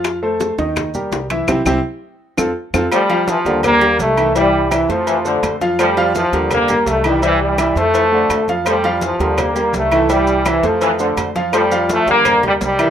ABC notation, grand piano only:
X:1
M:4/4
L:1/8
Q:1/4=167
K:F
V:1 name="Grand piano"
[F,Ff] [A,Ac]2 [_E,_E_e]2 [G,GB]2 [=E,=E=e] | [CEG] [CEG] z3 [CFA] z [CFA] | [A,Ac] [F,Ff]2 [G,GB]2 [G,GB]2 [E,Ee] | [E,Ee]2 [E,Ee] [A,Ac]2 [A,Ac]2 [F,Ff] |
[A,Ac] [F,Ff]2 [G,GB]2 [G,GB]2 [E,Ee] | [E,Ee]2 [E,Ee] [A,Ac]2 [A,Ac]2 [F,Ff] | [A,Ac] [F,Ff]2 [G,GB]2 [G,GB]2 [E,Ee] | [E,Ee]2 [E,Ee] [A,Ac]2 [A,Ac]2 [F,Ff] |
[A,Ac] [F,Ff]2 [G,GB]2 [G,GB]2 [E,Ee] |]